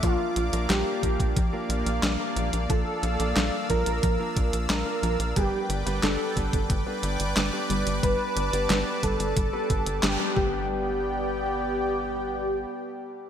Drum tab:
HH |x-xxx-xxx-xxx-xx|x-xxx-xxx-xxx-xx|x-xxx-xxx-xxx-xx|x-xxx-xxx-xxx---|
CP |----x-------x---|----x-------x---|----x-------x---|----x-------x---|
SD |----o-------o---|----o-------o---|----o-------o---|----o-------o---|
BD |o-----ooo-------|o-----o-o-o-----|o-----ooo-------|o-----o-o-o---o-|

HH |----------------|
CP |----------------|
SD |----------------|
BD |----------------|